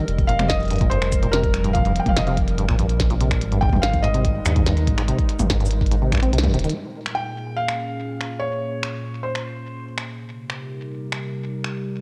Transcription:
0.00 6.75 G3 medium
0.00 4.75 C4 medium
0.00 7.90 A#4 loud
0.00 4.75 D#5 medium
0.08 2.00 F1 loud
0.08 3.41 F3 medium
0.08 closed hi-hat medium
0.18 kick loud
0.18 closed hi-hat soft
0.27 0.34 A#2 loud
0.27 0.50 F5 loud
0.27 closed hi-hat medium
0.39 0.49 C3 medium
0.39 finger snap medium
0.39 closed hi-hat medium
0.39 mid tom loud
0.48 0.92 D#5 loud
0.48 kick loud
0.48 snare loud
0.48 closed hi-hat medium
0.60 closed hi-hat soft
0.63 closed hi-hat soft
0.65 closed hi-hat soft
0.68 0.78 G2 medium
0.68 closed hi-hat soft
0.71 closed hi-hat medium
0.73 closed hi-hat soft
0.76 closed hi-hat soft
0.78 0.89 A#2 loud
0.78 kick loud
0.78 closed hi-hat soft
0.81 closed hi-hat medium
0.90 0.99 G2 medium
0.90 1.34 C5 loud
0.90 closed hi-hat medium
1.02 finger snap medium
1.12 kick loud
1.12 closed hi-hat medium
1.12 cabasa medium
1.23 1.27 A#2 loud
1.23 closed hi-hat soft
1.32 1.43 C3 medium
1.32 1.75 A#4 medium
1.32 snare loud
1.32 closed hi-hat medium
1.44 kick loud
1.44 closed hi-hat soft
1.54 finger snap medium
1.54 closed hi-hat medium
1.64 1.72 G2 medium
1.64 closed hi-hat medium
1.73 1.83 A#2 loud
1.73 1.98 F5 loud
1.73 kick loud
1.73 closed hi-hat medium
1.85 1.93 G2 medium
1.85 closed hi-hat soft
1.96 2.09 G5 medium
1.96 closed hi-hat medium
2.06 2.73 F1 loud
2.06 2.18 F5 medium
2.06 kick loud
2.06 closed hi-hat medium
2.06 mid tom loud
2.16 2.21 A#2 loud
2.16 2.28 D#5 medium
2.16 finger snap medium
2.16 snare loud
2.16 closed hi-hat medium
2.27 2.37 C3 medium
2.27 2.37 F5 medium
2.27 closed hi-hat soft
2.37 kick loud
2.37 closed hi-hat medium
2.48 closed hi-hat medium
2.58 2.66 G2 medium
2.58 closed hi-hat medium
2.69 2.76 A#2 loud
2.69 finger snap medium
2.69 kick loud
2.79 3.43 A#1 medium
2.79 2.87 G2 medium
2.79 closed hi-hat medium
2.89 closed hi-hat medium
3.00 kick loud
3.00 snare loud
3.00 closed hi-hat medium
3.10 3.15 A#2 loud
3.10 closed hi-hat soft
3.21 3.31 C3 medium
3.21 closed hi-hat medium
3.31 finger snap medium
3.31 kick loud
3.31 closed hi-hat medium
3.41 3.66 G#1 medium
3.41 6.75 G#3 medium
3.41 closed hi-hat medium
3.52 3.60 G2 medium
3.52 closed hi-hat soft
3.61 3.70 G#2 loud
3.61 7.55 D#4 medium
3.61 3.83 G5 loud
3.61 kick loud
3.69 4.39 G#1 loud
3.69 3.80 G2 medium
3.69 kick medium
3.69 mid tom loud
3.76 kick medium
3.82 4.04 F5 loud
3.82 finger snap medium
3.82 snare loud
3.82 closed hi-hat medium
3.94 kick loud
3.94 closed hi-hat soft
4.03 4.09 G#2 loud
4.03 6.28 D#5 loud
4.03 closed hi-hat medium
4.14 4.24 C3 medium
4.14 closed hi-hat medium
4.25 kick loud
4.25 closed hi-hat medium
4.46 4.89 D#2 medium
4.46 4.53 G2 medium
4.46 finger snap medium
4.46 closed hi-hat medium
4.46 cabasa medium
4.56 4.64 G#2 loud
4.56 kick loud
4.56 closed hi-hat medium
4.66 4.74 G2 medium
4.66 snare loud
4.66 closed hi-hat medium
4.77 closed hi-hat soft
4.87 5.12 G#1 medium
4.87 kick loud
4.87 closed hi-hat medium
4.98 5.02 G#2 loud
4.98 finger snap medium
4.98 closed hi-hat medium
5.08 5.18 C3 medium
5.08 closed hi-hat medium
5.19 kick loud
5.19 closed hi-hat soft
5.29 closed hi-hat medium
5.39 6.14 G#1 loud
5.39 5.47 G2 medium
5.39 closed hi-hat medium
5.39 mid tom loud
5.39 cabasa medium
5.50 5.57 G#2 loud
5.50 kick loud
5.50 snare loud
5.50 closed hi-hat medium
5.60 5.68 G2 medium
5.60 closed hi-hat soft
5.66 cabasa medium
5.71 closed hi-hat medium
5.81 kick loud
5.86 closed hi-hat medium
5.91 5.96 G#2 loud
5.91 closed hi-hat medium
6.02 6.12 C3 medium
6.12 6.35 A#1 medium
6.12 6.20 G2 loud
6.12 finger snap medium
6.12 kick loud
6.12 closed hi-hat medium
6.15 finger snap soft
6.17 finger snap soft
6.20 6.32 C4 loud
6.20 finger snap soft
6.20 closed hi-hat medium
6.33 6.46 C2 loud
6.33 6.38 C3 loud
6.33 closed hi-hat medium
6.38 snare loud
6.43 6.53 G2 medium
6.43 kick loud
6.43 closed hi-hat soft
6.43 mid tom medium
6.54 6.67 D#1 medium
6.54 6.59 C3 loud
6.54 closed hi-hat medium
6.59 closed hi-hat medium
6.64 6.74 D#3 medium
6.64 closed hi-hat medium
6.70 closed hi-hat medium
6.75 10.08 A#2 medium
6.90 10.08 G#4 medium
6.98 10.98 A#3 medium
7.06 finger snap medium
7.15 7.59 G5 loud
7.34 10.08 C#4 medium
7.57 8.43 F5 loud
7.68 finger snap medium
8.21 finger snap medium
8.40 9.26 C#5 medium
8.83 finger snap medium
9.23 9.82 C5 medium
9.35 finger snap medium
9.98 finger snap medium
10.08 12.01 C3 medium
10.31 12.01 G4 medium
10.40 12.01 G3 medium
10.40 12.01 D#4 medium
10.46 12.01 A#4 medium
10.46 finger snap soft
11.12 finger snap medium
11.64 finger snap soft

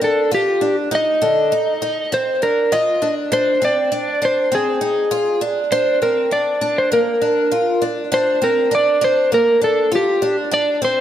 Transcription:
0.01 0.32 D4 medium
0.01 0.34 A4 medium
0.31 0.62 F4 medium
0.31 0.75 G4 medium
0.61 0.91 D4 medium
0.91 1.22 D#4 medium
0.91 2.17 D#5 loud
1.22 1.52 D3 medium
1.52 1.81 D#4 medium
1.82 2.12 D#4 medium
2.12 2.42 C4 medium
2.12 2.44 C5 medium
2.42 2.72 D4 medium
2.42 2.73 A#4 medium
2.72 3.02 F4 medium
2.72 3.14 D#5 medium
3.02 3.31 D4 medium
3.32 3.61 D4 medium
3.32 3.63 C5 loud
3.62 3.91 C4 medium
3.62 4.25 D5 medium
3.92 4.21 D4 medium
4.22 4.51 D4 medium
4.22 4.54 C5 medium
4.52 4.81 C4 medium
4.52 5.39 G#4 medium
4.81 5.11 D#4 medium
5.11 5.41 F4 medium
5.41 5.71 D4 medium
5.72 6.01 D4 loud
5.72 6.02 C5 loud
6.02 6.31 C4 medium
6.02 6.30 A#4 medium
6.31 6.60 D4 medium
6.31 6.79 D5 medium
6.61 6.92 D4 medium
6.78 6.93 C5 medium
6.92 7.22 A#3 medium
6.92 7.83 A#4 medium
7.22 7.52 D4 medium
7.52 7.82 F4 medium
7.82 8.11 D4 medium
8.12 8.41 D4 medium
8.12 8.44 C5 loud
8.42 8.71 C4 medium
8.42 8.74 A#4 medium
8.71 9.00 D4 medium
8.71 9.04 D5 medium
9.01 9.32 D4 medium
9.01 9.34 C5 loud
9.32 9.62 A#3 medium
9.32 9.64 A#4 loud
9.62 9.92 D4 medium
9.62 9.94 A4 medium
9.92 10.22 F4 medium
9.92 10.36 G4 medium
10.22 10.50 D4 medium
10.52 10.81 D4 medium
10.52 10.84 D5 loud
10.82 11.01 C4 medium
10.82 11.01 C5 loud

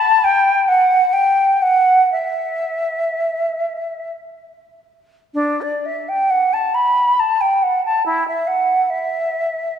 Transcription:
0.00 0.26 A5 loud
0.24 0.70 G5 loud
0.68 1.15 F#5 medium
1.13 1.63 G5 medium
1.62 2.12 F#5 medium
2.12 4.11 E5 medium
5.34 5.63 D4 medium
5.62 5.87 D5 medium
5.86 6.10 E5 medium
6.09 6.32 G5 medium
6.30 6.55 F#5 medium
6.53 6.76 A5 medium
6.74 7.21 B5 medium
7.20 7.42 A5 medium
7.41 7.64 G5 medium
7.63 7.84 F#5 medium
7.85 8.05 A5 medium
8.06 8.27 E4 medium
8.28 8.49 E5 medium
8.47 8.92 F#5 medium
8.90 9.79 E5 medium

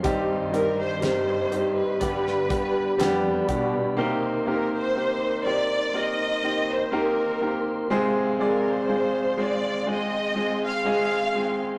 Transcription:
0.00 1.48 G2 medium
0.00 0.74 G2 medium
0.00 0.50 G3 medium
0.00 0.50 C4 medium
0.00 0.51 D#4 medium
0.00 1.97 C6 medium
0.04 1.03 G2 medium
0.04 1.03 D#3 medium
0.04 1.01 G3 medium
0.04 1.01 C4 medium
0.04 1.02 D#4 medium
0.04 0.51 G4 loud
0.04 1.99 G4 medium
0.04 1.04 G4 medium
0.04 1.99 D#5 medium
0.04 kick loud
0.04 closed hi-hat medium
0.52 0.99 G3 medium
0.52 1.00 C4 medium
0.52 1.00 D#4 medium
0.52 1.00 G4 medium
0.52 0.77 A#4 medium
0.52 closed hi-hat medium
0.78 1.97 G2 medium
0.78 1.00 C5 loud
1.01 1.49 G3 medium
1.01 2.01 G3 medium
1.01 1.49 C4 medium
1.01 2.01 C4 medium
1.01 1.49 D#4 medium
1.01 2.02 D#4 medium
1.01 2.02 G4 medium
1.01 1.49 A#4 medium
1.01 1.72 C5 medium
1.01 snare loud
1.01 closed hi-hat medium
1.51 1.98 G3 medium
1.51 1.98 C4 medium
1.51 1.99 D#4 medium
1.51 1.99 G4 medium
1.51 closed hi-hat medium
1.75 3.44 B4 medium
2.00 2.50 G2 medium
2.00 3.45 G2 medium
2.00 2.47 G2 medium
2.00 2.50 D3 medium
2.00 2.47 G3 medium
2.00 2.50 G3 medium
2.00 2.47 B3 medium
2.00 2.50 B3 medium
2.00 2.48 D4 medium
2.00 2.49 D4 medium
2.00 3.96 G4 medium
2.00 2.48 G4 medium
2.00 3.96 D5 medium
2.00 3.96 B5 medium
2.00 kick medium
2.00 closed hi-hat medium
2.27 snare soft
2.49 2.96 G2 medium
2.49 2.96 G3 medium
2.49 2.97 G3 soft
2.49 2.96 B3 medium
2.49 2.98 B3 soft
2.49 2.97 D4 medium
2.49 2.99 D4 soft
2.49 2.99 G4 soft
2.49 2.97 G4 medium
2.49 kick medium
2.49 closed hi-hat medium
2.98 3.45 F2 medium
2.98 3.46 G3 loud
2.98 3.48 G3 medium
2.98 3.46 B3 loud
2.98 3.48 B3 medium
2.98 3.46 D4 medium
2.98 3.48 D4 medium
2.98 3.47 G4 loud
2.98 3.46 G4 medium
2.98 snare loud
2.98 closed hi-hat medium
3.47 3.94 B2 medium
3.47 3.95 G3 medium
3.47 3.99 G3 soft
3.47 3.95 B3 medium
3.47 3.98 B3 medium
3.47 3.95 D4 medium
3.47 3.98 D4 medium
3.47 3.97 G4 medium
3.47 3.96 G4 medium
3.47 kick medium
3.47 closed hi-hat medium
3.97 5.41 C3 medium
3.97 4.44 A#3 loud
3.97 4.44 C4 medium
3.97 4.45 D#4 medium
3.97 7.88 D#4 medium
3.97 4.45 G4 medium
3.97 4.45 A#4 loud
3.97 7.88 A#4 medium
3.97 11.78 C6 medium
4.46 4.93 A#3 medium
4.46 4.94 C4 medium
4.46 4.94 D#4 medium
4.46 4.94 G4 medium
4.46 4.94 A#4 medium
4.46 4.71 A#4 medium
4.73 5.42 C5 loud
4.95 5.43 A#3 medium
4.95 5.43 C4 medium
4.95 5.43 D#4 medium
4.95 5.43 G4 medium
4.95 5.43 C5 medium
5.45 5.92 A#3 medium
5.45 5.92 C4 medium
5.45 5.93 D#4 medium
5.45 5.93 G4 medium
5.45 5.93 C5 medium
5.45 5.95 D5 loud
5.93 6.41 A#3 medium
5.93 6.41 C4 medium
5.93 6.41 D#4 medium
5.93 6.41 G4 medium
5.93 6.42 A#4 medium
5.93 6.70 D#5 loud
6.43 6.90 A#3 medium
6.43 6.90 C4 medium
6.43 6.90 D#4 medium
6.43 6.91 G4 medium
6.43 6.91 C5 medium
6.71 6.95 C5 medium
6.92 7.39 A#3 loud
6.92 7.39 C4 medium
6.92 7.40 D#4 medium
6.92 7.40 G4 loud
6.92 7.40 A#4 loud
6.92 7.68 A#4 medium
7.41 7.88 A#3 medium
7.41 7.88 C4 medium
7.41 7.89 D#4 medium
7.41 7.89 G4 medium
7.41 7.89 A#4 medium
7.90 9.35 C3 medium
7.90 8.38 G#3 loud
7.90 8.38 C4 loud
7.90 11.78 C4 medium
7.90 8.38 F4 loud
7.90 8.38 G#4 loud
7.90 11.78 G#4 medium
7.90 8.38 C5 loud
7.90 9.87 F5 medium
8.39 8.87 G#3 medium
8.39 8.87 C4 medium
8.39 8.87 F4 medium
8.39 8.87 G#4 medium
8.39 8.87 D5 loud
8.44 8.65 A#4 medium
8.68 9.41 C5 medium
8.89 9.36 G#3 medium
8.89 9.36 C4 medium
8.89 9.36 F4 medium
8.89 9.36 G#4 medium
8.89 9.36 C5 medium
9.37 9.85 G#3 medium
9.37 9.85 C4 medium
9.37 9.85 F4 medium
9.37 9.85 G#4 medium
9.37 9.85 C5 medium
9.37 9.89 D5 loud
9.86 10.34 G#3 medium
9.86 10.34 C4 medium
9.86 10.34 F4 medium
9.86 10.34 G#4 medium
9.86 10.34 C5 medium
9.86 11.78 G5 medium
9.90 10.59 D#5 loud
10.35 10.83 G#3 medium
10.35 10.83 C4 medium
10.35 10.83 F4 medium
10.35 10.84 G#4 medium
10.35 10.84 C5 medium
10.64 10.86 F5 loud
10.85 11.32 G#3 medium
10.85 11.33 C4 loud
10.85 11.33 F4 loud
10.85 11.33 G#4 loud
10.85 11.33 D#5 loud
10.85 11.57 F5 loud
11.35 11.78 G#3 medium
11.35 11.78 C4 medium
11.35 11.78 F4 medium
11.35 11.78 G#4 medium
11.35 11.78 C5 medium

